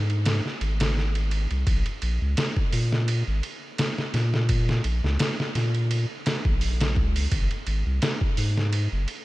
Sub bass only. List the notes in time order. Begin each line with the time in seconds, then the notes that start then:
Already playing: G#2
0.61 G#1
1.51 C2
1.67 A#1
2.03 A#1
2.22 C#2
2.73 A#2
3.28 G#1
4.14 A#2
4.85 A#1
5.04 C#2
5.55 A#2
6.45 A#1
6.96 C#2
7.32 G#1
7.67 G#1
7.86 C2
8.38 G#2
8.92 F#1